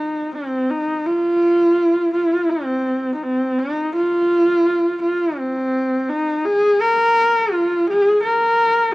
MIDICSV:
0, 0, Header, 1, 2, 480
1, 0, Start_track
1, 0, Tempo, 715990
1, 709, Time_signature, 4, 2, 24, 8
1, 5997, End_track
2, 0, Start_track
2, 0, Title_t, "Horsehead fiddle"
2, 0, Program_c, 0, 110
2, 0, Note_on_c, 0, 63, 85
2, 226, Note_off_c, 0, 63, 0
2, 230, Note_on_c, 0, 60, 82
2, 472, Note_on_c, 0, 63, 91
2, 482, Note_off_c, 0, 60, 0
2, 712, Note_on_c, 0, 65, 96
2, 722, Note_off_c, 0, 63, 0
2, 1427, Note_off_c, 0, 65, 0
2, 1431, Note_on_c, 0, 65, 80
2, 1674, Note_on_c, 0, 60, 88
2, 1684, Note_off_c, 0, 65, 0
2, 2105, Note_off_c, 0, 60, 0
2, 2109, Note_on_c, 0, 63, 58
2, 2166, Note_on_c, 0, 60, 85
2, 2176, Note_off_c, 0, 63, 0
2, 2403, Note_on_c, 0, 63, 89
2, 2413, Note_off_c, 0, 60, 0
2, 2636, Note_off_c, 0, 63, 0
2, 2650, Note_on_c, 0, 65, 97
2, 3332, Note_off_c, 0, 65, 0
2, 3366, Note_on_c, 0, 65, 89
2, 3598, Note_on_c, 0, 60, 90
2, 3608, Note_off_c, 0, 65, 0
2, 4082, Note_on_c, 0, 63, 91
2, 4092, Note_off_c, 0, 60, 0
2, 4323, Note_on_c, 0, 68, 104
2, 4333, Note_off_c, 0, 63, 0
2, 4567, Note_on_c, 0, 70, 102
2, 4577, Note_off_c, 0, 68, 0
2, 5041, Note_on_c, 0, 65, 85
2, 5051, Note_off_c, 0, 70, 0
2, 5278, Note_on_c, 0, 68, 95
2, 5288, Note_off_c, 0, 65, 0
2, 5511, Note_off_c, 0, 68, 0
2, 5515, Note_on_c, 0, 70, 97
2, 5997, Note_off_c, 0, 70, 0
2, 5997, End_track
0, 0, End_of_file